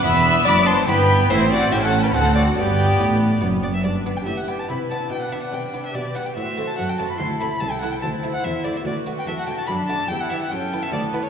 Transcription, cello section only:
\new Staff \with { instrumentName = "Cello section" } { \clef bass \time 3/4 \key g \major \tempo 4 = 144 e,4 fis,4 g,4 | a,4 a,4 d,4 | g,4 a,4 fis,4 | g,4 a,4 c4 |
b,4 c4 b,4 | a,4 fis,4 d,4 | c,4 d,4 e,4 | \key d \major d,4 e,4 fis,4 |
e,4 fis,4 d,4 | }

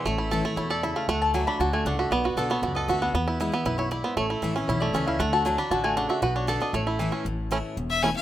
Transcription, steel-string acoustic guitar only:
\new Staff \with { instrumentName = "Steel-string acoustic guitar" } { \time 4/4 \key a \major \tempo 4 = 233 << { r4 <e a cis' e'>8 <cis' e'>8 r2 | r4 <d a d' fis'>4 r2 | r4 <d b d' fis'>8 fis'8 r4 <d b d' fis'>4 | r4 <e gis b e'>8 e'8 r2 |
r4 <e a cis' e'>8 <cis' e'>8 r4 <e a cis' e'>4 | r4 <d a d' fis'>8 fis'8 r2 | r4 <d b d' fis'>8 <d' fis'>8 r4 <e a cis' e'>4 | r4 <e a cis' e'>4 r4 <e a cis' e'>8 <cis' e'>8 | } \\ { a,2 b,4 cis4 | d2 d4 a,4 | b,2 fis,2 | e,2 fis,4 gis,4 |
a,2 e,2 | d2 d4 cis4 | b,2 a,2 | a,2 e,2 | } >> }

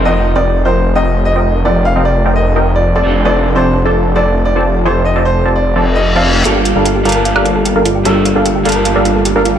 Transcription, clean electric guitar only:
\new Staff \with { instrumentName = "Clean electric guitar" } { \time 4/4 \key g \minor \tempo 4 = 150 <f c' ees' bes'>1~ | <f c' ees' bes'>2.~ <f c' ees' bes'>8 <f c' d' a'>8~ | <f c' d' a'>1~ | <f c' d' a'>2.~ <f c' d' a'>8 r8 |
<g bes f' a'>4. <g bes f' a''>2~ <g bes f' a''>8 | <g bes f' a'>4. <g bes f' a''>2~ <g bes f' a''>8 | }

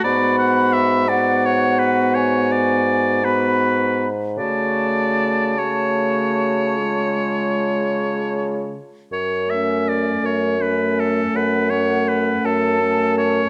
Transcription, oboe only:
\new Staff \with { instrumentName = "Oboe" } { \time 12/8 \key fis \minor \tempo 4. = 54 d''8 fis''8 e''8 d''8 cis''8 b'8 cis''8 d''4 b'4 r8 | d''4. cis''1 r8 | cis''8 e''8 d''8 cis''8 b'8 a'8 b'8 cis''8 b'8 a'4 cis''8 | }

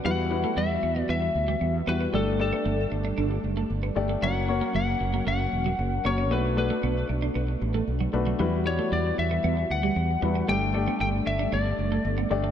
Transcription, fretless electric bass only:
\new Staff \with { instrumentName = "Fretless electric bass" } { \clef bass \time 4/4 \key e \dorian \tempo 4 = 115 e,4 e,8 e,8 e,8 d,8 e,8 e,8 | g,,4 g,,8 g,,8 g,,8 fis,,8 g,,8 g,,8 | fis,,4 fis,,8 fis,,8 fis,,8 e,,8 fis,,8 fis,,8 | b,,4 b,,8 b,,8 b,,8 a,,8 b,,8 b,,8 |
e,4 e,8 e,8 e,8 d,8 e,8 e,8 | g,,4 g,,8 g,,8 g,,8 fis,,8 g,,8 g,,8 | }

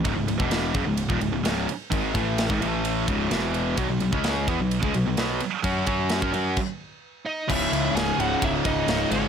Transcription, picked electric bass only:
\new Staff \with { instrumentName = "Picked electric bass" } { \clef bass \time 4/4 \key cis \minor \tempo 4 = 129 cis,,16 cis,,16 cis,,16 e,,8. fis,,16 cis,,8 dis,,16 cis,,16 cis,,16 cis,,8 r8 | gis,,8 a,,8. gis,,16 a,,4 cis,,8 e,,4 | b,,16 b,,16 b,,16 cis,8. e,16 b,,8 cis,16 b,,16 b,,16 b,,8 r8 | fis,8 fis,8. fis,16 fis,8 r2 |
cis,,8 cis,8 cis,,8 cis,,8 cis,,8 cis,,8 cis,,8 gis,,8 | }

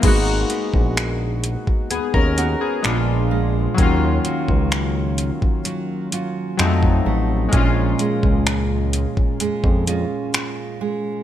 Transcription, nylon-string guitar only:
\new Staff \with { instrumentName = "Nylon-string guitar" } { \clef bass \time 4/4 \key aes \dorian \tempo 4 = 64 aes8 ces'4. ces'8 <ces' ges' bes'>8 bes,8 aes8 | ees8 ges4. ges8 <ges des' f'>8 f8 a8 | bes,8 aes4. aes8 <aes des' f'>8 f'8 aes8 | }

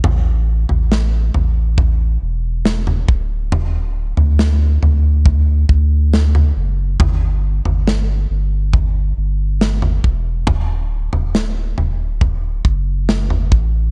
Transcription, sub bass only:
\new Staff \with { instrumentName = "Sub bass" } { \clef bass \time 4/4 \key d \major \tempo 4 = 69 a,,8. a,,8. a,,4 e,,4 d,,8~ | d,,8. d,8. d,4 d,4 fis,,8 | g,,8. g,,8. g,,4 g,,4 e,,8 | d,,8. d,,8. d,,4 fis,,4 a,,8 | }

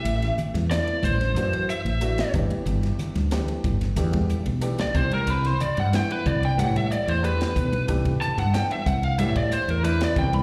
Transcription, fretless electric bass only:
\new Staff \with { instrumentName = "Fretless electric bass" } { \clef bass \time 4/4 \key c \lydian \tempo 4 = 92 a,,8 r16 e,8 r16 a,,8 fis,8. a,,8. g,,16 r16 | g,,8 r16 d,8 r16 g,,8 e,8. b,,8. c,16 r16 | c,8 r16 g,8 r16 c,8 a,8. e,8. b,,8 | c,8 r16 g,8 r16 c,8 a,8. e,8. c,8 | }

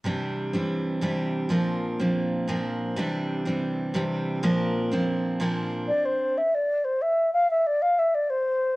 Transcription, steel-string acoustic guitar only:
\new Staff \with { instrumentName = "Steel-string acoustic guitar" } { \clef bass \time 9/8 \key c \mixolydian \tempo 4. = 123 <c e g c' d'>4. <c e g c' d'>4. <c e g c' d'>4. | <bes, f bes c' d'>4. <bes, f bes c' d'>4. <bes, f bes c' d'>4. | <c e g c' d'>4. <c e g c' d'>4. <c e g c' d'>4. | <bes, f bes c' d'>4. <bes, f bes c' d'>4. <bes, f bes c' d'>4. |
r1 r8 | r1 r8 | }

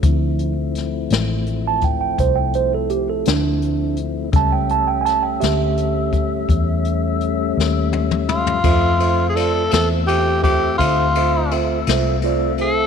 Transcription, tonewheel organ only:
\new Staff \with { instrumentName = "Tonewheel organ" } { \time 12/8 \key d \minor \tempo 4. = 56 <f a c' e'>1. | <g a cis' e''>1. | <a c' f' e''>1. | }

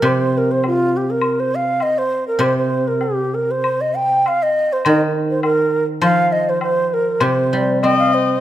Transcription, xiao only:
\new Staff \with { instrumentName = "Xiao" } { \time 2/4 \tempo 4 = 100 c''8 bes'16 c''16 f'8 g'16 bes'16~ | bes'16 c''16 f''8 ees''16 c''8 bes'16 | c''16 c''8 bes'16 g'8 bes'16 c''16~ | c''16 ees''16 g''8 f''16 ees''8 c''16 |
ees''16 r8 c''16 bes'8. r16 | f''8 ees''16 c''16 c''8 bes'8 | c''4 ees''16 f''16 c''8 | }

